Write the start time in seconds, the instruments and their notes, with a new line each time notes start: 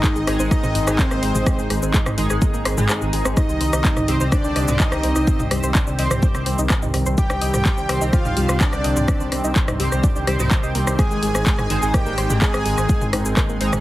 Already playing: analog synth pad D#3 G#3 C4, analog synth lead D#4, supersaw synth D#5
0.03 synth arpeggio sound G#3 G#4, kick, clap, shaker
0.16 detuned saw bass G#1, synth arpeggio sound G#3 G#4, shaker
0.27 detuned saw bass G#1, synth arpeggio sound G#3 G#4, analog polysynth G#3 D#4 G#4, cross-stick, open hi-hat
0.40 detuned saw bass G#1, synth arpeggio sound C4 C5, shaker
0.51 synth arpeggio sound G#3 G#4, analog synth lead D#4, supersaw synth D#5, kick, cross-stick, shaker
0.63 detuned saw bass G#1, synth arpeggio sound C4 C5, mid tom, shaker
0.75 detuned saw bass G#1, synth arpeggio sound D#3 D#4, open hi-hat
0.87 detuned saw bass G#1, analog polysynth G#3 D#4 G#4, synth arpeggio sound G#4 G#5, cross-stick, shaker
0.99 synth arpeggio sound A#3 A#4, analog synth lead C4, supersaw synth C5, kick, clap, shaker
1.11 detuned saw bass G#1, synth arpeggio sound A#3 A#4, cross-stick, shaker
1.23 detuned saw bass G#1, synth arpeggio sound C5 C6, open hi-hat
1.35 detuned saw bass G#1, synth arpeggio sound G#3 G#4, mid tom, shaker
1.46 synth arpeggio sound G#3 G#4, kick, cross-stick, shaker
1.59 detuned saw bass G#1, synth arpeggio sound G#3 G#4, shaker
1.70 detuned saw bass G#1, synth arpeggio sound G#3 G#4, cross-stick, open hi-hat
1.82 detuned saw bass G#1, synth arpeggio sound C4 C5, shaker
1.94 synth arpeggio sound G#3 G#4, kick, clap, shaker
2.06 detuned saw bass G#1, synth arpeggio sound C4 C5, cross-stick, mid tom, shaker
2.18 detuned saw bass G#1, synth arpeggio sound D#3 D#4, analog polysynth G#3 D#4 G#4, open hi-hat
2.30 detuned saw bass G#1, synth arpeggio sound G#4 G#5, cross-stick, shaker
2.42 synth arpeggio sound A#3 A#4, kick, shaker
2.54 detuned saw bass G#1, synth arpeggio sound A#3 A#4, shaker
2.65 detuned saw bass G#1, synth arpeggio sound C5 C6, cross-stick, open hi-hat
2.78 detuned saw bass G#1, analog polysynth G#3 D#4 G#4, synth arpeggio sound G#3 G#4, mid tom, shaker
2.89 synth arpeggio sound G#3 G#4, cross-stick, clap, shaker
3.02 detuned saw bass G#1, synth arpeggio sound G#3 G#4, shaker
3.13 detuned saw bass G#1, synth arpeggio sound G#3 G#4, open hi-hat
3.25 detuned saw bass G#1, synth arpeggio sound C4 C5, cross-stick, shaker
3.37 analog synth pad C3 D#3 G3 C4, synth arpeggio sound C4 C5, analog synth lead D#4, supersaw synth D#5, kick, cross-stick, shaker
3.49 detuned saw bass C2, synth arpeggio sound C4 C5, shaker
3.61 detuned saw bass C2, synth arpeggio sound C4 C5, open hi-hat
3.73 detuned saw bass C2, synth arpeggio sound D#4 D#5, cross-stick, shaker
3.85 synth arpeggio sound C4 C5, kick, clap, shaker
3.97 detuned saw bass C2, synth arpeggio sound D#4 D#5, cross-stick, mid tom, shaker
4.08 detuned saw bass C2, synth arpeggio sound G3 G4, analog polysynth C4 G4 C5, open hi-hat
4.20 detuned saw bass C2, synth arpeggio sound C5 C6, shaker
4.32 synth arpeggio sound D4 D5, analog synth lead D4, supersaw synth D5, kick, cross-stick, shaker
4.44 detuned saw bass C2, synth arpeggio sound D4 D5, shaker
4.56 detuned saw bass C2, synth arpeggio sound D#5 D#6, cross-stick, open hi-hat
4.68 detuned saw bass C2, synth arpeggio sound C4 C5, analog polysynth C4 G4 C5, mid tom, shaker
4.80 synth arpeggio sound C4 C5, analog synth lead D#4, supersaw synth D#5, kick, clap, shaker
4.92 detuned saw bass C2, synth arpeggio sound C4 C5, cross-stick, shaker
5.03 detuned saw bass C2, synth arpeggio sound C4 C5, open hi-hat
5.16 detuned saw bass C2, synth arpeggio sound D#4 D#5, cross-stick, shaker
5.27 synth arpeggio sound C4 C5, kick, shaker
5.39 detuned saw bass C2, synth arpeggio sound D#4 D#5, mid tom, shaker
5.51 detuned saw bass C2, synth arpeggio sound G3 G4, cross-stick, open hi-hat
5.63 detuned saw bass C2, synth arpeggio sound C5 C6, shaker
5.75 synth arpeggio sound D4 D5, kick, cross-stick, clap, shaker
5.87 detuned saw bass C2, synth arpeggio sound D4 D5, shaker
5.99 detuned saw bass C2, analog polysynth C4 G4 C5, synth arpeggio sound D#5 D#6, open hi-hat
6.11 detuned saw bass C2, synth arpeggio sound C4 C5, cross-stick, mid tom, shaker
6.22 synth arpeggio sound C4 C5, kick, shaker
6.35 detuned saw bass C2, synth arpeggio sound C4 C5, cross-stick, shaker
6.46 detuned saw bass C2, synth arpeggio sound C4 C5, open hi-hat
6.58 detuned saw bass C2, synth arpeggio sound D#4 D#5, shaker
6.70 synth arpeggio sound C4 C5, kick, cross-stick, clap, shaker
6.82 detuned saw bass C2, synth arpeggio sound D#4 D#5, mid tom, shaker
6.94 detuned saw bass C2, synth arpeggio sound G3 G4, cross-stick, open hi-hat
7.06 detuned saw bass C2, synth arpeggio sound C5 C6, shaker
7.18 synth arpeggio sound D4 D5, analog synth lead G4, supersaw synth G5, kick, shaker
7.30 detuned saw bass C2, synth arpeggio sound D4 D5, cross-stick, shaker
7.41 detuned saw bass C2, synth arpeggio sound D#5 D#6, open hi-hat
7.54 detuned saw bass C2, synth arpeggio sound C4 C5, cross-stick, mid tom, shaker
7.65 synth arpeggio sound C4 C5, kick, clap, shaker
7.78 detuned saw bass C2, synth arpeggio sound C4 C5, shaker
7.89 detuned saw bass C2, synth arpeggio sound C4 C5, analog polysynth C4 G4 C5, cross-stick, open hi-hat
8.01 detuned saw bass C2, synth arpeggio sound D#4 D#5, shaker
8.13 synth arpeggio sound C4 C5, analog synth lead F4, supersaw synth F5, kick, cross-stick, shaker
8.25 detuned saw bass C2, synth arpeggio sound D#4 D#5, mid tom, shaker
8.37 detuned saw bass C2, synth arpeggio sound G3 G4, open hi-hat
8.49 detuned saw bass C2, analog polysynth C4 G4 C5, synth arpeggio sound C5 C6, cross-stick, shaker
8.60 synth arpeggio sound D4 D5, analog synth lead D4, supersaw synth D5, kick, clap, shaker
8.73 detuned saw bass C2, synth arpeggio sound D4 D5, cross-stick, shaker
8.84 detuned saw bass C2, synth arpeggio sound D#5 D#6, open hi-hat
8.97 detuned saw bass C2, synth arpeggio sound C4 C5, mid tom, shaker
9.08 synth arpeggio sound C4 C5, kick, cross-stick, shaker
9.20 detuned saw bass C2, synth arpeggio sound C4 C5, shaker
9.32 detuned saw bass C2, synth arpeggio sound C4 C5, cross-stick, open hi-hat
9.44 detuned saw bass C2, synth arpeggio sound D#4 D#5, shaker
9.56 synth arpeggio sound C4 C5, kick, clap, shaker
9.68 detuned saw bass C2, synth arpeggio sound D#4 D#5, cross-stick, mid tom, shaker
9.80 detuned saw bass C2, synth arpeggio sound G3 G4, analog polysynth C4 G4 C5, open hi-hat
9.92 detuned saw bass C2, synth arpeggio sound C5 C6, cross-stick, shaker
10.04 synth arpeggio sound D4 D5, kick, shaker
10.16 detuned saw bass C2, synth arpeggio sound D4 D5, shaker
10.27 detuned saw bass C2, synth arpeggio sound G3 G4, analog polysynth C4 G4 C5, cross-stick, open hi-hat
10.39 detuned saw bass C2, synth arpeggio sound C4 C5, analog polysynth C4 G4 C5, mid tom, shaker
10.51 synth arpeggio sound D#5 D#6, kick, cross-stick, clap, shaker
10.63 detuned saw bass C2, synth arpeggio sound D#5 D#6, shaker
10.75 detuned saw bass C2, synth arpeggio sound A#3 A#4, open hi-hat
10.87 detuned saw bass C2, synth arpeggio sound C5 C6, cross-stick, shaker
10.99 analog synth pad G#3 C4, synth arpeggio sound G#3 G#4, analog synth lead G#4, supersaw synth G#5, kick, cross-stick, shaker
11.11 detuned saw bass G#1, synth arpeggio sound G#3 G#4, shaker
11.23 detuned saw bass G#1, synth arpeggio sound G#3 G#4, open hi-hat
11.35 detuned saw bass G#1, synth arpeggio sound C4 C5, cross-stick, shaker
11.46 synth arpeggio sound G#3 G#4, kick, clap, shaker
11.59 detuned saw bass G#1, synth arpeggio sound C4 C5, cross-stick, mid tom, shaker
11.70 detuned saw bass G#1, synth arpeggio sound D#3 D#4, analog polysynth G#3 D#4 C5, open hi-hat
11.82 detuned saw bass G#1, synth arpeggio sound G#4 G#5, shaker
11.94 synth arpeggio sound A#3 A#4, analog synth lead G4, supersaw synth G5, kick, cross-stick, shaker
12.06 detuned saw bass G#1, synth arpeggio sound A#3 A#4, shaker
12.18 detuned saw bass G#1, synth arpeggio sound C5 C6, cross-stick, open hi-hat
12.30 detuned saw bass G#1, analog polysynth G#3 D#4 G#4, synth arpeggio sound G#3 G#4, mid tom, shaker
12.42 synth arpeggio sound G#3 G#4, analog synth lead G#4, supersaw synth G#5, kick, clap, shaker
12.54 detuned saw bass G#1, synth arpeggio sound G#3 G#4, cross-stick, shaker
12.65 detuned saw bass G#1, synth arpeggio sound G#3 G#4, open hi-hat
12.78 detuned saw bass G#1, synth arpeggio sound C4 C5, cross-stick, shaker
12.89 synth arpeggio sound G#3 G#4, kick, shaker
13.01 detuned saw bass G#1, synth arpeggio sound C4 C5, mid tom, shaker
13.13 detuned saw bass G#1, synth arpeggio sound D#3 D#4, cross-stick, open hi-hat
13.25 detuned saw bass G#1, synth arpeggio sound G#4 G#5, shaker
13.37 synth arpeggio sound A#3 A#4, kick, cross-stick, clap, shaker
13.49 detuned saw bass G#1, synth arpeggio sound A#3 A#4, shaker
13.61 detuned saw bass G#1, analog polysynth G#3 D#4 G#4, synth arpeggio sound C5 C6, open hi-hat
13.73 detuned saw bass G#1, synth arpeggio sound G#3 G#4, cross-stick, mid tom, shaker